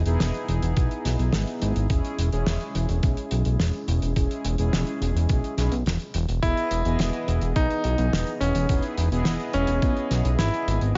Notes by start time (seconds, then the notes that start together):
0.06 E1 B3 D#4 E4 G#4, closed hi-hat
0.20 E1, snare, closed hi-hat
0.34 closed hi-hat
0.48 E1, closed hi-hat
0.62 E1, closed hi-hat
0.76 B1, kick, closed hi-hat
0.91 closed hi-hat
1.05 B1, snare, closed hi-hat
1.19 B1, closed hi-hat
1.33 G#1, snare, closed hi-hat
1.47 closed hi-hat
1.62 G#1, closed hi-hat
1.76 G#1, closed hi-hat
1.90 E1 G#3 C#4 E4 G#4, kick, closed hi-hat
2.05 closed hi-hat
2.18 E1, closed hi-hat
2.32 E1 G#3 C#4 E4 G#4, closed hi-hat
2.47 E1, snare, closed hi-hat
2.61 closed hi-hat
2.75 E1, closed hi-hat
2.89 E1, closed hi-hat
3.03 B1, kick, closed hi-hat
3.17 closed hi-hat
3.31 B1, closed hi-hat
3.45 B1, closed hi-hat
3.59 E1, snare, closed hi-hat
3.73 closed hi-hat
3.88 E1, closed hi-hat
4.02 E1, closed hi-hat
4.16 E1 G#3 C#4 E4 G#4, kick, closed hi-hat
4.31 closed hi-hat
4.44 E1, closed hi-hat
4.58 E1 G#3 C#4 E4 G#4, closed hi-hat
4.73 E1, snare, closed hi-hat
4.87 closed hi-hat
5.01 E1, closed hi-hat
5.15 E1, closed hi-hat
5.29 B1, kick, closed hi-hat
5.44 closed hi-hat
5.57 B1 G#3 C#4 E4 G#4, snare, closed hi-hat
5.72 B1, closed hi-hat
5.86 E1, snare, closed hi-hat
6.00 closed hi-hat
6.14 E1, closed hi-hat
6.29 E1, closed hi-hat
6.42 E1 B3 E4 G#4 D#5, kick, closed hi-hat
6.57 closed hi-hat
6.71 E1, closed hi-hat
6.85 E1 E3 B3 G#4 D#5, closed hi-hat
6.99 E1, snare, closed hi-hat
7.13 closed hi-hat
7.28 E1, closed hi-hat
7.41 E1, closed hi-hat
7.56 B1 D#4, kick, closed hi-hat
7.70 closed hi-hat
7.84 B1, closed hi-hat
7.98 B1, closed hi-hat
8.13 E1, snare, closed hi-hat
8.27 closed hi-hat
8.40 E1 C#4, closed hi-hat
8.55 E1, closed hi-hat
8.69 E1 B3 D#4 E4 G#4, kick, closed hi-hat
8.83 closed hi-hat
8.97 E1, closed hi-hat
9.12 E1 B3 E4 G#4 D#5, closed hi-hat
9.25 E1, snare, closed hi-hat
9.40 closed hi-hat
9.53 E1 C#4, closed hi-hat
9.67 E1, closed hi-hat
9.82 B1, kick, closed hi-hat
9.97 closed hi-hat
10.10 B1, snare, closed hi-hat
10.25 B1, closed hi-hat
10.39 G#1 E4, snare, closed hi-hat
10.54 closed hi-hat
10.67 G#1, closed hi-hat
10.81 G#1, closed hi-hat